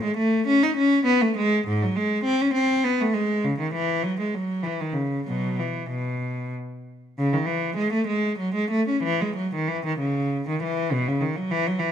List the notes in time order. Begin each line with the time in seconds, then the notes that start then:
0.04 G#3
0.17 A3
0.47 C#4
0.63 D#4
0.77 C#4
1.05 B3
1.22 A3
1.37 G#3
1.67 G#2
1.83 F#3
1.96 G#3
2.24 C4
2.42 C#4
2.54 C4
2.84 B3
3.01 A3
3.14 G#3
3.45 C#3
3.60 D#3
3.74 E3
4.03 F#3
4.20 G#3
4.34 F#3
4.63 E3
4.81 D#3
4.93 C#3
5.27 B2 F#3
5.59 E3
5.90 B2
7.19 C#3
7.33 D#3
7.46 E3
7.77 G#3
7.93 A3
8.08 G#3
8.39 F#3
8.55 G#3
8.71 A3
8.88 C#4
9.03 E3
9.21 G#3
9.36 F#3
9.55 D#3
9.68 E3
9.86 D#3
9.99 C#3
10.49 D#3
10.63 E3
10.92 B2
11.08 C#3
11.21 D#3
11.36 F#3
11.51 E3
11.67 F#3
11.80 E3